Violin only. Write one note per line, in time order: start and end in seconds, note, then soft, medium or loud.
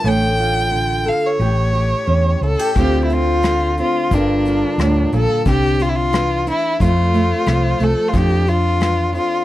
0.07 1.10 G5 medium
1.08 1.27 F5 medium
1.26 2.44 C#5 medium
2.45 2.75 A4 medium
2.78 3.02 G4 medium
3.04 3.14 E4 medium
3.12 3.79 F4 medium
3.81 4.15 F4 medium
4.14 5.14 D4 medium
5.16 5.46 A4 medium
5.50 5.84 G4 medium
5.82 5.90 F4 medium
5.89 5.97 E4 medium
5.96 6.48 F4 medium
6.50 6.79 E4 medium
6.84 7.85 F4 medium
7.83 8.10 A4 medium
8.08 8.18 F4 medium
8.17 8.50 G4 medium
8.49 9.15 F4 medium
9.16 9.45 F4 medium